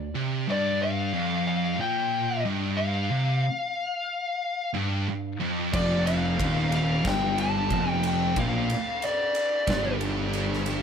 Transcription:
0.15 0.47 C3 loud
0.48 1.12 G2 loud
0.48 0.82 D5 medium
0.83 1.46 F5 loud
1.14 1.78 F2 loud
1.48 1.81 F5 loud
1.79 2.44 A#2 loud
1.79 2.41 G5 loud
2.46 3.10 G2 loud
2.77 4.70 F5 loud
3.12 3.43 C3 loud
4.76 5.07 G2 loud
5.09 5.35 G2 medium
5.41 5.73 F2 loud
5.73 6.35 F1 loud
5.73 6.38 F2 loud
5.73 6.04 D5 loud
5.73 kick loud
5.73 crash loud
6.07 6.74 F5 loud
6.07 ride medium
6.40 7.01 D#1 medium
6.40 7.06 D#2 loud
6.40 kick loud
6.40 ride loud
6.72 7.07 F5 loud
6.72 ride medium
7.05 7.66 G1 loud
7.05 7.70 G2 loud
7.05 7.40 G5 loud
7.05 kick loud
7.05 snare loud
7.05 ride loud
7.38 7.90 A5 loud
7.38 ride medium
7.70 8.32 F1 loud
7.70 8.36 F2 loud
7.70 kick loud
7.70 ride medium
7.90 8.05 G5 loud
8.03 8.38 G5 medium
8.03 ride medium
8.36 8.67 A#1 loud
8.36 8.69 A#2 loud
8.36 9.04 F5 loud
8.36 kick loud
8.36 ride loud
8.70 ride medium
9.02 9.98 D5 medium
9.02 ride medium
9.35 ride medium
9.67 10.82 G1 loud
9.67 10.82 G2 loud
9.67 kick loud
9.67 snare loud
9.67 ride loud
10.01 ride medium
10.33 ride loud
10.53 snare soft
10.66 ride medium

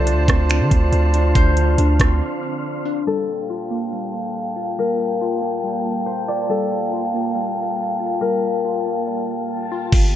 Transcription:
0.00 0.14 C2 loud
0.00 0.49 D3 medium
0.00 3.04 D4 medium
0.00 3.03 F4 medium
0.00 1.83 A4 loud
0.00 1.19 C5 medium
0.00 3.03 C5 medium
0.00 1.26 D5 loud
0.00 3.03 D5 medium
0.00 3.04 F5 medium
0.00 3.04 A5 loud
0.07 1.13 D4 medium
0.07 closed hi-hat medium
0.12 0.27 D2 loud
0.28 0.62 D2 loud
0.28 1.57 C4 medium
0.28 kick medium
0.28 cross-stick loud
0.28 closed hi-hat medium
0.50 1.34 D3 medium
0.50 finger snap loud
0.50 closed hi-hat medium
0.60 0.71 D3 loud
0.71 0.92 D2 loud
0.71 kick loud
0.71 closed hi-hat medium
0.92 1.34 D2 loud
0.92 closed hi-hat medium
1.14 1.77 D4 medium
1.14 closed hi-hat medium
1.35 1.77 D2 loud
1.35 1.56 D3 medium
1.35 3.33 C5 loud
1.35 kick loud
1.35 closed hi-hat medium
1.57 2.20 D3 medium
1.57 closed hi-hat medium
1.78 1.99 D2 loud
1.78 2.84 D4 medium
1.78 closed hi-hat medium
1.99 2.21 D2 loud
1.99 3.07 C4 medium
1.99 kick medium
1.99 cross-stick loud
1.99 closed hi-hat medium
2.21 3.07 D3 medium
2.85 3.07 D4 medium
3.07 3.27 G3 loud
3.07 9.89 A#3 medium
3.07 9.89 F4 medium
3.07 4.85 A4 loud
3.07 6.46 F5 medium
3.07 6.46 G5 medium
3.07 9.89 G5 medium
3.07 9.89 A5 loud
3.07 9.89 A5 medium
3.29 3.91 G3 medium
3.50 4.55 F4 medium
3.71 5.00 A#3 medium
3.93 4.77 G3 medium
4.56 5.20 F4 medium
4.78 4.98 G3 medium
4.78 6.56 A#4 medium
5.00 5.62 G3 medium
5.21 6.27 F4 loud
5.42 6.71 A#3 medium
5.64 6.48 G3 medium
6.06 8.04 C5 medium
6.28 6.92 F4 medium
6.28 8.13 D5 medium
6.49 6.70 G3 medium
6.49 8.27 A4 loud
6.49 9.89 F5 medium
6.72 7.34 G3 medium
6.93 7.99 F4 medium
7.14 8.43 A#3 medium
7.35 8.20 G3 medium
8.00 8.63 F4 medium
8.21 8.42 G3 medium
8.21 10.16 A#4 loud
8.43 9.06 G3 medium
8.65 9.71 F4 medium
8.86 9.93 A#3 medium
9.07 9.93 G3 medium
9.72 9.93 F4 medium
9.92 10.16 G1 loud
9.92 10.16 A#3 medium
9.92 10.16 G4 medium
9.92 10.16 F5 medium
9.92 10.16 A5 medium
9.92 kick loud
9.92 crash medium

